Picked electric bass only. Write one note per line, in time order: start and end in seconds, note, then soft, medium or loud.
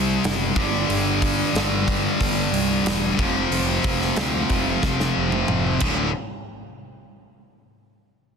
0.00 0.16 C2 medium
0.24 0.50 F#1 medium
0.55 0.82 G1 medium
0.89 1.41 G1 medium
1.54 2.07 G1 medium
2.21 2.47 G1 medium
2.53 2.79 C2 medium
2.85 3.11 E1 medium
3.18 3.45 F1 medium
3.51 3.77 F1 medium
3.84 4.10 F1 medium
4.17 4.43 D2 medium
4.50 4.76 F1 medium
4.83 5.09 F1 medium
5.16 5.42 F1 medium
5.50 5.75 F1 medium
5.82 6.12 D1 medium